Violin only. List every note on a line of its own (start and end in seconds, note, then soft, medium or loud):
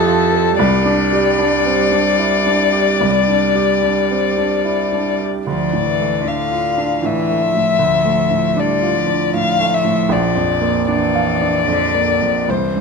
0.00 0.55 A4 medium
0.59 5.21 D5 medium
5.48 6.29 D5 medium
6.27 7.07 F5 medium
7.06 8.61 E5 medium
8.59 9.36 D5 medium
9.37 9.75 F5 medium
9.74 10.13 E5 medium
10.12 10.89 D5 medium
10.90 12.52 D5 medium
12.50 12.81 C5 medium